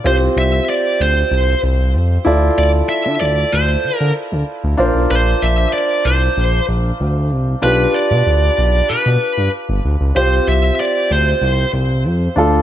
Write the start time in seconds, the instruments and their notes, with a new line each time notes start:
0.04 analog synth bass C2, grand piano C4 F4 G4 C5, lead electric guitar C5
0.36 analog synth bass C2, lead electric guitar E5
0.70 lead electric guitar D5
1.00 analog synth bass D2, lead electric guitar C5
1.31 analog synth bass C2
1.63 analog synth bass C2
1.94 analog synth bass F2
2.25 analog synth bass D2, grand piano E4 F4 A4 D5
2.58 analog synth bass D2, lead electric guitar D5
2.89 lead electric guitar E5
3.06 analog synth bass D3
3.21 analog synth bass D2, lead electric guitar D5
3.52 analog synth bass D2, lead electric guitar C5
3.84 analog synth bass D3
3.97 analog synth bass D3, lead electric guitar A#4
4.32 analog synth bass D2
4.64 analog synth bass D2
4.77 analog synth bass A#1, grand piano D4 F4 A#4 C5
4.95 analog synth bass B1
5.11 analog synth bass A#1, lead electric guitar C5
5.42 analog synth bass A#1, lead electric guitar E5
5.73 lead electric guitar D5
6.05 analog synth bass C2, lead electric guitar C5
6.37 analog synth bass A#1
6.68 analog synth bass A#1
7.00 analog synth bass D2
7.32 analog synth bass C2
7.62 analog synth bass B1, grand piano D4 F4 G4 B4, lead electric guitar B4
7.94 lead electric guitar D5
8.11 analog synth bass B2
8.26 analog synth bass D2
8.58 analog synth bass B1
8.89 analog synth bass B2, lead electric guitar B4
9.06 analog synth bass B2
9.37 analog synth bass G2
9.69 analog synth bass G1
9.85 analog synth bass D2
10.01 analog synth bass C#2
10.15 analog synth bass C2, grand piano C4 F4 G4 C5, lead electric guitar C5
10.48 analog synth bass C2, lead electric guitar E5
10.80 lead electric guitar D5
11.11 analog synth bass D2, lead electric guitar C5
11.41 analog synth bass C2
11.73 analog synth bass C2
12.05 analog synth bass F2
12.36 analog synth bass D2, grand piano D4 F4 A4